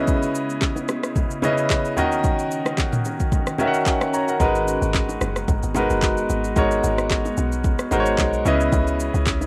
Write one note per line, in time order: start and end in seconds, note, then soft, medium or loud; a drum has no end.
0.00 0.67 C#3 medium
0.00 1.95 C#3 medium
0.00 1.95 B3 medium
0.00 0.68 C#4 medium
0.00 0.71 E4 medium
0.00 1.95 E4 medium
0.00 0.68 B4 medium
0.00 0.68 D#5 loud
0.08 kick loud
0.08 low conga medium
0.08 shaker medium
0.22 shaker medium
0.35 shaker medium
0.50 shaker soft
0.61 kick medium
0.61 clap medium
0.61 high bongo medium
0.61 shaker medium
0.76 low bongo medium
0.76 shaker medium
0.88 cross-stick medium
0.88 high bongo soft
0.88 low bongo soft
0.88 shaker medium
1.03 cross-stick medium
1.03 shaker medium
1.16 kick loud
1.16 low conga medium
1.16 shaker medium
1.30 shaker medium
1.42 1.97 C#3 medium
1.42 1.96 C#4 medium
1.42 1.97 E4 medium
1.42 1.98 B4 medium
1.42 1.97 D#5 loud
1.42 high bongo medium
1.42 low bongo medium
1.42 low conga medium
1.42 shaker medium
1.58 shaker medium
1.70 kick medium
1.70 clap loud
1.70 high bongo medium
1.70 shaker medium
1.85 shaker soft
1.97 2.05 D#2 medium
1.97 2.84 D#3 medium
1.97 4.38 D#3 medium
1.97 2.84 C#4 medium
1.97 4.38 C#4 medium
1.97 8.42 F#4 medium
1.97 2.84 F#4 medium
1.97 2.85 A#4 medium
1.97 2.85 D#5 medium
1.97 shaker medium
2.12 shaker medium
2.24 kick loud
2.24 low conga medium
2.24 shaker medium
2.39 shaker medium
2.51 shaker medium
2.65 cross-stick medium
2.65 low bongo medium
2.65 shaker soft
2.77 kick medium
2.77 clap medium
2.77 high bongo medium
2.77 shaker medium
2.92 mid tom medium
2.92 low bongo medium
2.92 shaker medium
3.05 high bongo soft
3.05 low bongo soft
3.05 shaker medium
3.20 kick medium
3.20 shaker medium
3.32 kick loud
3.32 low conga medium
3.32 shaker medium
3.47 cross-stick medium
3.47 shaker medium
3.58 4.25 D#3 medium
3.58 4.25 C#4 medium
3.58 4.25 F#4 medium
3.58 3.87 A#4 medium
3.58 3.67 E5 medium
3.58 high bongo medium
3.58 low bongo medium
3.58 low conga medium
3.58 shaker medium
3.68 3.90 F#5 medium
3.74 shaker medium
3.86 4.12 G#5 medium
3.86 kick medium
3.86 clap loud
3.86 high bongo medium
3.86 shaker medium
4.01 cross-stick loud
4.01 shaker soft
4.14 4.28 C#5 medium
4.14 4.27 A#5 medium
4.14 shaker medium
4.28 4.40 A#4 medium
4.28 4.54 F#5 medium
4.28 shaker medium
4.39 4.77 G#1 loud
4.39 5.27 G#3 medium
4.39 8.42 G#3 medium
4.39 8.42 B3 medium
4.39 5.27 D#4 medium
4.39 5.27 F#4 medium
4.39 5.28 A#4 medium
4.39 5.28 B4 medium
4.39 kick loud
4.39 low conga medium
4.39 shaker medium
4.55 shaker medium
4.68 shaker medium
4.82 5.16 G#1 loud
4.82 shaker medium
4.94 kick medium
4.94 clap loud
4.94 high bongo medium
4.94 shaker medium
5.09 low bongo medium
5.09 shaker medium
5.21 5.45 F#1 loud
5.21 cross-stick medium
5.21 high bongo soft
5.21 low bongo soft
5.21 shaker medium
5.36 cross-stick medium
5.36 shaker medium
5.48 5.61 G#1 loud
5.48 kick loud
5.48 low conga medium
5.48 shaker medium
5.63 5.87 G#1 medium
5.63 shaker medium
5.75 6.41 G#3 medium
5.75 6.41 D#4 medium
5.75 6.42 F#4 medium
5.75 6.42 A#4 medium
5.75 6.42 B4 medium
5.75 high bongo medium
5.75 low bongo medium
5.75 low conga medium
5.75 shaker medium
5.90 6.25 F#1 medium
5.90 shaker medium
6.02 kick loud
6.02 clap loud
6.02 high bongo medium
6.02 shaker medium
6.17 shaker soft
6.30 6.53 G#1 medium
6.30 shaker medium
6.44 shaker medium
6.56 6.80 G#1 loud
6.56 7.43 G#3 medium
6.56 7.43 D#4 medium
6.56 7.44 F#4 medium
6.56 7.44 A#4 medium
6.56 7.44 C#5 medium
6.56 kick loud
6.56 low conga medium
6.56 shaker medium
6.71 shaker medium
6.84 7.31 G#1 loud
6.84 shaker medium
6.98 cross-stick medium
6.98 shaker medium
7.10 kick medium
7.10 clap loud
7.10 high bongo medium
7.10 shaker medium
7.25 low bongo medium
7.25 shaker medium
7.37 7.74 B1 medium
7.37 high bongo soft
7.37 low bongo soft
7.37 shaker medium
7.52 shaker medium
7.64 kick loud
7.64 low conga medium
7.64 shaker medium
7.79 cross-stick medium
7.79 shaker medium
7.91 8.15 G#1 medium
7.91 8.45 G#3 medium
7.91 8.46 D#4 medium
7.91 8.46 F#4 medium
7.91 8.46 A#4 medium
7.91 8.00 C5 medium
7.91 high bongo medium
7.91 low bongo medium
7.91 low conga medium
7.91 shaker medium
8.00 8.50 C#5 medium
8.06 shaker medium
8.18 8.42 B1 medium
8.18 kick medium
8.18 clap loud
8.18 high bongo medium
8.18 shaker medium
8.33 shaker soft
8.45 8.69 C#2 loud
8.45 9.32 C#3 medium
8.45 9.47 C#3 medium
8.45 9.47 B3 medium
8.45 9.33 C#4 medium
8.45 9.47 E4 medium
8.45 9.33 E4 medium
8.45 9.33 B4 medium
8.45 9.34 D#5 loud
8.45 shaker loud
8.60 shaker soft
8.72 9.09 C#2 loud
8.72 kick loud
8.72 low conga medium
8.72 shaker medium
8.87 shaker medium
9.00 shaker loud
9.14 9.47 C#2 loud
9.14 shaker soft
9.26 kick loud
9.26 clap loud
9.26 high bongo medium
9.26 shaker medium
9.41 low bongo medium
9.41 shaker medium